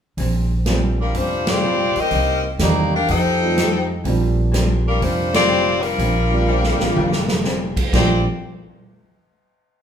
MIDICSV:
0, 0, Header, 1, 7, 480
1, 0, Start_track
1, 0, Key_signature, -2, "major"
1, 0, Tempo, 485044
1, 175, Time_signature, 4, 2, 24, 8
1, 9718, End_track
2, 0, Start_track
2, 0, Title_t, "Saxophone section"
2, 0, Program_c, 0, 65
2, 1000, Note_on_c, 0, 65, 60
2, 1000, Note_on_c, 0, 70, 72
2, 1001, Note_on_c, 0, 55, 60
2, 1002, Note_on_c, 0, 62, 60
2, 1138, Note_off_c, 0, 55, 0
2, 1138, Note_off_c, 0, 65, 0
2, 1138, Note_off_c, 0, 70, 0
2, 1139, Note_off_c, 0, 62, 0
2, 1157, Note_on_c, 0, 55, 69
2, 1157, Note_on_c, 0, 65, 66
2, 1160, Note_on_c, 0, 62, 68
2, 1161, Note_on_c, 0, 72, 81
2, 1466, Note_off_c, 0, 55, 0
2, 1466, Note_off_c, 0, 65, 0
2, 1468, Note_off_c, 0, 62, 0
2, 1469, Note_off_c, 0, 72, 0
2, 1481, Note_on_c, 0, 60, 78
2, 1486, Note_on_c, 0, 65, 75
2, 1487, Note_on_c, 0, 67, 79
2, 1490, Note_on_c, 0, 74, 91
2, 1948, Note_off_c, 0, 60, 0
2, 1951, Note_off_c, 0, 65, 0
2, 1951, Note_off_c, 0, 67, 0
2, 1953, Note_off_c, 0, 74, 0
2, 1974, Note_on_c, 0, 60, 75
2, 1974, Note_on_c, 0, 70, 71
2, 1976, Note_on_c, 0, 75, 87
2, 1979, Note_on_c, 0, 67, 71
2, 2434, Note_off_c, 0, 60, 0
2, 2434, Note_off_c, 0, 70, 0
2, 2435, Note_off_c, 0, 75, 0
2, 2436, Note_off_c, 0, 67, 0
2, 2593, Note_on_c, 0, 67, 68
2, 2593, Note_on_c, 0, 74, 75
2, 2597, Note_on_c, 0, 58, 66
2, 2599, Note_on_c, 0, 63, 68
2, 2881, Note_off_c, 0, 67, 0
2, 2882, Note_off_c, 0, 74, 0
2, 2883, Note_off_c, 0, 58, 0
2, 2884, Note_off_c, 0, 63, 0
2, 2914, Note_on_c, 0, 77, 86
2, 2918, Note_on_c, 0, 67, 75
2, 2919, Note_on_c, 0, 62, 75
2, 2921, Note_on_c, 0, 70, 72
2, 3064, Note_off_c, 0, 77, 0
2, 3066, Note_off_c, 0, 62, 0
2, 3066, Note_off_c, 0, 67, 0
2, 3067, Note_off_c, 0, 70, 0
2, 3072, Note_on_c, 0, 63, 78
2, 3073, Note_on_c, 0, 72, 77
2, 3075, Note_on_c, 0, 79, 90
2, 3078, Note_on_c, 0, 69, 75
2, 3821, Note_off_c, 0, 63, 0
2, 3822, Note_off_c, 0, 72, 0
2, 3823, Note_off_c, 0, 79, 0
2, 3825, Note_off_c, 0, 69, 0
2, 4820, Note_on_c, 0, 70, 83
2, 4823, Note_on_c, 0, 62, 71
2, 4824, Note_on_c, 0, 65, 69
2, 4826, Note_on_c, 0, 55, 70
2, 4961, Note_off_c, 0, 62, 0
2, 4963, Note_off_c, 0, 55, 0
2, 4964, Note_off_c, 0, 65, 0
2, 4964, Note_off_c, 0, 70, 0
2, 4973, Note_on_c, 0, 62, 78
2, 4974, Note_on_c, 0, 55, 77
2, 4976, Note_on_c, 0, 65, 77
2, 4976, Note_on_c, 0, 72, 94
2, 5277, Note_off_c, 0, 65, 0
2, 5287, Note_on_c, 0, 67, 87
2, 5287, Note_on_c, 0, 74, 103
2, 5288, Note_on_c, 0, 65, 83
2, 5291, Note_off_c, 0, 62, 0
2, 5292, Note_off_c, 0, 55, 0
2, 5292, Note_off_c, 0, 72, 0
2, 5293, Note_on_c, 0, 60, 86
2, 5734, Note_off_c, 0, 67, 0
2, 5734, Note_off_c, 0, 74, 0
2, 5735, Note_off_c, 0, 65, 0
2, 5737, Note_off_c, 0, 60, 0
2, 5751, Note_on_c, 0, 62, 70
2, 5751, Note_on_c, 0, 70, 80
2, 5755, Note_on_c, 0, 65, 71
2, 5757, Note_on_c, 0, 55, 70
2, 7360, Note_off_c, 0, 62, 0
2, 7360, Note_off_c, 0, 70, 0
2, 7362, Note_off_c, 0, 65, 0
2, 7363, Note_off_c, 0, 55, 0
2, 7860, Note_on_c, 0, 60, 66
2, 7861, Note_on_c, 0, 65, 70
2, 7862, Note_on_c, 0, 67, 67
2, 7865, Note_on_c, 0, 74, 72
2, 8153, Note_off_c, 0, 60, 0
2, 8154, Note_off_c, 0, 65, 0
2, 8155, Note_off_c, 0, 67, 0
2, 8156, Note_off_c, 0, 74, 0
2, 9718, End_track
3, 0, Start_track
3, 0, Title_t, "Grand piano"
3, 0, Program_c, 1, 0
3, 652, Note_on_c, 1, 55, 49
3, 655, Note_on_c, 1, 58, 47
3, 656, Note_on_c, 1, 53, 51
3, 657, Note_on_c, 1, 60, 46
3, 662, Note_on_c, 1, 62, 58
3, 942, Note_off_c, 1, 55, 0
3, 943, Note_off_c, 1, 58, 0
3, 944, Note_off_c, 1, 53, 0
3, 944, Note_off_c, 1, 60, 0
3, 947, Note_off_c, 1, 62, 0
3, 2569, Note_on_c, 1, 51, 52
3, 2575, Note_on_c, 1, 58, 48
3, 2578, Note_on_c, 1, 55, 49
3, 2578, Note_on_c, 1, 60, 48
3, 2584, Note_on_c, 1, 62, 55
3, 2859, Note_off_c, 1, 51, 0
3, 2862, Note_off_c, 1, 58, 0
3, 2864, Note_off_c, 1, 55, 0
3, 2864, Note_off_c, 1, 60, 0
3, 2867, Note_off_c, 1, 62, 0
3, 3379, Note_on_c, 1, 53, 48
3, 3388, Note_on_c, 1, 55, 45
3, 3388, Note_on_c, 1, 57, 44
3, 3393, Note_on_c, 1, 65, 56
3, 3394, Note_on_c, 1, 60, 48
3, 3520, Note_off_c, 1, 53, 0
3, 3524, Note_off_c, 1, 55, 0
3, 3524, Note_off_c, 1, 57, 0
3, 3527, Note_off_c, 1, 60, 0
3, 3527, Note_off_c, 1, 65, 0
3, 4013, Note_on_c, 1, 53, 62
3, 4015, Note_on_c, 1, 55, 52
3, 4015, Note_on_c, 1, 58, 54
3, 4017, Note_on_c, 1, 60, 53
3, 4023, Note_on_c, 1, 62, 61
3, 4476, Note_off_c, 1, 53, 0
3, 4476, Note_off_c, 1, 55, 0
3, 4477, Note_off_c, 1, 58, 0
3, 4477, Note_off_c, 1, 60, 0
3, 4481, Note_off_c, 1, 62, 0
3, 4503, Note_on_c, 1, 53, 46
3, 4504, Note_on_c, 1, 55, 41
3, 4505, Note_on_c, 1, 60, 39
3, 4507, Note_on_c, 1, 58, 39
3, 4512, Note_on_c, 1, 62, 51
3, 5231, Note_off_c, 1, 53, 0
3, 5232, Note_off_c, 1, 55, 0
3, 5232, Note_off_c, 1, 60, 0
3, 5234, Note_off_c, 1, 58, 0
3, 5236, Note_off_c, 1, 62, 0
3, 6242, Note_on_c, 1, 53, 55
3, 6250, Note_on_c, 1, 55, 53
3, 6251, Note_on_c, 1, 58, 50
3, 6253, Note_on_c, 1, 60, 51
3, 6258, Note_on_c, 1, 62, 60
3, 6693, Note_off_c, 1, 53, 0
3, 6697, Note_off_c, 1, 55, 0
3, 6697, Note_off_c, 1, 58, 0
3, 6699, Note_off_c, 1, 60, 0
3, 6701, Note_off_c, 1, 62, 0
3, 6727, Note_on_c, 1, 53, 56
3, 6728, Note_on_c, 1, 55, 52
3, 6734, Note_on_c, 1, 65, 58
3, 6737, Note_on_c, 1, 58, 53
3, 6738, Note_on_c, 1, 60, 52
3, 6872, Note_off_c, 1, 53, 0
3, 6872, Note_off_c, 1, 55, 0
3, 6876, Note_off_c, 1, 65, 0
3, 6877, Note_off_c, 1, 58, 0
3, 6877, Note_off_c, 1, 60, 0
3, 7846, Note_on_c, 1, 55, 53
3, 7846, Note_on_c, 1, 58, 50
3, 7847, Note_on_c, 1, 53, 56
3, 7854, Note_on_c, 1, 62, 59
3, 7857, Note_on_c, 1, 60, 52
3, 8136, Note_off_c, 1, 58, 0
3, 8137, Note_off_c, 1, 53, 0
3, 8137, Note_off_c, 1, 55, 0
3, 8141, Note_off_c, 1, 62, 0
3, 8142, Note_off_c, 1, 60, 0
3, 9718, End_track
4, 0, Start_track
4, 0, Title_t, "Hollow-body jazz guitar"
4, 0, Program_c, 2, 26
4, 178, Note_on_c, 2, 46, 47
4, 193, Note_on_c, 2, 55, 45
4, 200, Note_on_c, 2, 60, 49
4, 212, Note_on_c, 2, 62, 53
4, 513, Note_off_c, 2, 46, 0
4, 521, Note_off_c, 2, 55, 0
4, 524, Note_off_c, 2, 60, 0
4, 530, Note_off_c, 2, 62, 0
4, 661, Note_on_c, 2, 46, 54
4, 679, Note_on_c, 2, 55, 58
4, 683, Note_on_c, 2, 60, 69
4, 689, Note_on_c, 2, 62, 61
4, 995, Note_off_c, 2, 46, 0
4, 1003, Note_off_c, 2, 55, 0
4, 1006, Note_off_c, 2, 60, 0
4, 1009, Note_off_c, 2, 62, 0
4, 1134, Note_on_c, 2, 46, 40
4, 1142, Note_on_c, 2, 55, 42
4, 1162, Note_on_c, 2, 60, 46
4, 1168, Note_on_c, 2, 62, 43
4, 1471, Note_off_c, 2, 46, 0
4, 1475, Note_off_c, 2, 55, 0
4, 1485, Note_off_c, 2, 60, 0
4, 1488, Note_off_c, 2, 62, 0
4, 1616, Note_on_c, 2, 46, 49
4, 1625, Note_on_c, 2, 55, 51
4, 1635, Note_on_c, 2, 60, 54
4, 1638, Note_on_c, 2, 62, 60
4, 1952, Note_off_c, 2, 46, 0
4, 1956, Note_off_c, 2, 55, 0
4, 1961, Note_off_c, 2, 60, 0
4, 1963, Note_off_c, 2, 62, 0
4, 2095, Note_on_c, 2, 48, 42
4, 2109, Note_on_c, 2, 55, 44
4, 2120, Note_on_c, 2, 58, 43
4, 2125, Note_on_c, 2, 63, 48
4, 2431, Note_off_c, 2, 48, 0
4, 2438, Note_off_c, 2, 55, 0
4, 2443, Note_off_c, 2, 58, 0
4, 2446, Note_off_c, 2, 63, 0
4, 2570, Note_on_c, 2, 48, 50
4, 2573, Note_on_c, 2, 55, 56
4, 2582, Note_on_c, 2, 58, 58
4, 2592, Note_on_c, 2, 63, 59
4, 2908, Note_off_c, 2, 48, 0
4, 2909, Note_off_c, 2, 55, 0
4, 2914, Note_off_c, 2, 58, 0
4, 2919, Note_off_c, 2, 63, 0
4, 3040, Note_on_c, 2, 53, 37
4, 3055, Note_on_c, 2, 57, 43
4, 3057, Note_on_c, 2, 63, 47
4, 3072, Note_on_c, 2, 67, 45
4, 3382, Note_off_c, 2, 53, 0
4, 3390, Note_off_c, 2, 57, 0
4, 3391, Note_off_c, 2, 63, 0
4, 3398, Note_off_c, 2, 67, 0
4, 3531, Note_on_c, 2, 53, 60
4, 3535, Note_on_c, 2, 57, 57
4, 3544, Note_on_c, 2, 63, 58
4, 3550, Note_on_c, 2, 67, 56
4, 3867, Note_off_c, 2, 53, 0
4, 3869, Note_off_c, 2, 57, 0
4, 3874, Note_off_c, 2, 63, 0
4, 3877, Note_off_c, 2, 67, 0
4, 3997, Note_on_c, 2, 46, 48
4, 4017, Note_on_c, 2, 55, 49
4, 4022, Note_on_c, 2, 60, 53
4, 4038, Note_on_c, 2, 62, 54
4, 4340, Note_off_c, 2, 46, 0
4, 4350, Note_off_c, 2, 55, 0
4, 4352, Note_off_c, 2, 60, 0
4, 4360, Note_off_c, 2, 62, 0
4, 4470, Note_on_c, 2, 46, 59
4, 4488, Note_on_c, 2, 55, 61
4, 4488, Note_on_c, 2, 60, 66
4, 4496, Note_on_c, 2, 62, 69
4, 4815, Note_off_c, 2, 46, 0
4, 4825, Note_off_c, 2, 55, 0
4, 4825, Note_off_c, 2, 60, 0
4, 4828, Note_off_c, 2, 62, 0
4, 4956, Note_on_c, 2, 46, 43
4, 4965, Note_on_c, 2, 55, 42
4, 4975, Note_on_c, 2, 60, 43
4, 4980, Note_on_c, 2, 62, 45
4, 5298, Note_off_c, 2, 46, 0
4, 5303, Note_off_c, 2, 55, 0
4, 5308, Note_off_c, 2, 60, 0
4, 5310, Note_off_c, 2, 62, 0
4, 5448, Note_on_c, 2, 46, 53
4, 5458, Note_on_c, 2, 55, 61
4, 5458, Note_on_c, 2, 60, 58
4, 5463, Note_on_c, 2, 62, 63
4, 5784, Note_off_c, 2, 46, 0
4, 5789, Note_off_c, 2, 55, 0
4, 5789, Note_off_c, 2, 60, 0
4, 5792, Note_off_c, 2, 62, 0
4, 5920, Note_on_c, 2, 46, 40
4, 5926, Note_on_c, 2, 55, 44
4, 5944, Note_on_c, 2, 60, 43
4, 5953, Note_on_c, 2, 62, 47
4, 6260, Note_off_c, 2, 46, 0
4, 6263, Note_off_c, 2, 55, 0
4, 6272, Note_off_c, 2, 60, 0
4, 6276, Note_off_c, 2, 62, 0
4, 6399, Note_on_c, 2, 46, 57
4, 6413, Note_on_c, 2, 55, 64
4, 6423, Note_on_c, 2, 60, 67
4, 6426, Note_on_c, 2, 62, 69
4, 6739, Note_off_c, 2, 46, 0
4, 6746, Note_off_c, 2, 55, 0
4, 6752, Note_off_c, 2, 60, 0
4, 6753, Note_off_c, 2, 62, 0
4, 6887, Note_on_c, 2, 46, 46
4, 6909, Note_on_c, 2, 55, 47
4, 6916, Note_on_c, 2, 60, 46
4, 6927, Note_on_c, 2, 62, 55
4, 7224, Note_off_c, 2, 46, 0
4, 7235, Note_off_c, 2, 55, 0
4, 7238, Note_off_c, 2, 60, 0
4, 7244, Note_off_c, 2, 62, 0
4, 7361, Note_on_c, 2, 46, 59
4, 7375, Note_on_c, 2, 55, 65
4, 7377, Note_on_c, 2, 60, 71
4, 7389, Note_on_c, 2, 62, 69
4, 7701, Note_off_c, 2, 46, 0
4, 7708, Note_off_c, 2, 55, 0
4, 7709, Note_off_c, 2, 60, 0
4, 7715, Note_off_c, 2, 62, 0
4, 7853, Note_on_c, 2, 46, 54
4, 7866, Note_on_c, 2, 55, 58
4, 7875, Note_on_c, 2, 60, 59
4, 7879, Note_on_c, 2, 62, 65
4, 8108, Note_off_c, 2, 46, 0
4, 8114, Note_off_c, 2, 55, 0
4, 8119, Note_off_c, 2, 60, 0
4, 8121, Note_off_c, 2, 62, 0
4, 9718, End_track
5, 0, Start_track
5, 0, Title_t, "Upright bass"
5, 0, Program_c, 3, 32
5, 171, Note_on_c, 3, 34, 73
5, 1094, Note_off_c, 3, 34, 0
5, 1131, Note_on_c, 3, 29, 76
5, 1894, Note_off_c, 3, 29, 0
5, 2090, Note_on_c, 3, 36, 75
5, 2538, Note_off_c, 3, 36, 0
5, 2559, Note_on_c, 3, 40, 71
5, 3012, Note_off_c, 3, 40, 0
5, 3056, Note_on_c, 3, 41, 80
5, 3973, Note_off_c, 3, 41, 0
5, 4008, Note_on_c, 3, 34, 79
5, 4928, Note_off_c, 3, 34, 0
5, 4968, Note_on_c, 3, 29, 85
5, 5888, Note_off_c, 3, 29, 0
5, 5923, Note_on_c, 3, 34, 76
5, 6686, Note_off_c, 3, 34, 0
5, 6714, Note_on_c, 3, 33, 59
5, 6870, Note_off_c, 3, 33, 0
5, 6880, Note_on_c, 3, 29, 81
5, 7806, Note_off_c, 3, 29, 0
5, 7845, Note_on_c, 3, 34, 81
5, 8146, Note_off_c, 3, 34, 0
5, 9718, End_track
6, 0, Start_track
6, 0, Title_t, "Muted upright bass strokes"
6, 1941, Note_on_c, 9, 29, 35
6, 2039, Note_off_c, 9, 29, 0
6, 9718, End_track
7, 0, Start_track
7, 0, Title_t, "Drums"
7, 174, Note_on_c, 9, 46, 42
7, 175, Note_on_c, 9, 36, 29
7, 273, Note_off_c, 9, 46, 0
7, 274, Note_off_c, 9, 36, 0
7, 652, Note_on_c, 9, 38, 62
7, 652, Note_on_c, 9, 42, 52
7, 751, Note_off_c, 9, 38, 0
7, 751, Note_off_c, 9, 42, 0
7, 1133, Note_on_c, 9, 46, 42
7, 1135, Note_on_c, 9, 36, 31
7, 1232, Note_off_c, 9, 46, 0
7, 1234, Note_off_c, 9, 36, 0
7, 1454, Note_on_c, 9, 38, 71
7, 1454, Note_on_c, 9, 51, 60
7, 1552, Note_off_c, 9, 38, 0
7, 1552, Note_off_c, 9, 51, 0
7, 1936, Note_on_c, 9, 46, 35
7, 2035, Note_off_c, 9, 46, 0
7, 2087, Note_on_c, 9, 46, 40
7, 2093, Note_on_c, 9, 36, 31
7, 2186, Note_off_c, 9, 46, 0
7, 2191, Note_off_c, 9, 36, 0
7, 2566, Note_on_c, 9, 38, 65
7, 2566, Note_on_c, 9, 42, 49
7, 2665, Note_off_c, 9, 38, 0
7, 2665, Note_off_c, 9, 42, 0
7, 3051, Note_on_c, 9, 36, 29
7, 3052, Note_on_c, 9, 46, 42
7, 3150, Note_off_c, 9, 36, 0
7, 3151, Note_off_c, 9, 46, 0
7, 3538, Note_on_c, 9, 38, 64
7, 3538, Note_on_c, 9, 42, 51
7, 3637, Note_off_c, 9, 38, 0
7, 3637, Note_off_c, 9, 42, 0
7, 4008, Note_on_c, 9, 36, 29
7, 4009, Note_on_c, 9, 46, 42
7, 4107, Note_off_c, 9, 36, 0
7, 4108, Note_off_c, 9, 46, 0
7, 4492, Note_on_c, 9, 38, 63
7, 4492, Note_on_c, 9, 42, 51
7, 4591, Note_off_c, 9, 38, 0
7, 4591, Note_off_c, 9, 42, 0
7, 4966, Note_on_c, 9, 36, 31
7, 4968, Note_on_c, 9, 46, 43
7, 5065, Note_off_c, 9, 36, 0
7, 5067, Note_off_c, 9, 46, 0
7, 5287, Note_on_c, 9, 38, 77
7, 5287, Note_on_c, 9, 51, 63
7, 5386, Note_off_c, 9, 38, 0
7, 5386, Note_off_c, 9, 51, 0
7, 5766, Note_on_c, 9, 46, 36
7, 5865, Note_off_c, 9, 46, 0
7, 5924, Note_on_c, 9, 36, 30
7, 5930, Note_on_c, 9, 46, 41
7, 6023, Note_off_c, 9, 36, 0
7, 6029, Note_off_c, 9, 46, 0
7, 6567, Note_on_c, 9, 38, 49
7, 6666, Note_off_c, 9, 38, 0
7, 6728, Note_on_c, 9, 38, 59
7, 6827, Note_off_c, 9, 38, 0
7, 6890, Note_on_c, 9, 47, 59
7, 6989, Note_off_c, 9, 47, 0
7, 7048, Note_on_c, 9, 38, 63
7, 7147, Note_off_c, 9, 38, 0
7, 7206, Note_on_c, 9, 38, 75
7, 7305, Note_off_c, 9, 38, 0
7, 7366, Note_on_c, 9, 38, 52
7, 7465, Note_off_c, 9, 38, 0
7, 7686, Note_on_c, 9, 36, 70
7, 7689, Note_on_c, 9, 49, 68
7, 7785, Note_off_c, 9, 36, 0
7, 7788, Note_off_c, 9, 49, 0
7, 7848, Note_on_c, 9, 36, 84
7, 7851, Note_on_c, 9, 38, 70
7, 7851, Note_on_c, 9, 49, 69
7, 7947, Note_off_c, 9, 36, 0
7, 7950, Note_off_c, 9, 38, 0
7, 7950, Note_off_c, 9, 49, 0
7, 9718, End_track
0, 0, End_of_file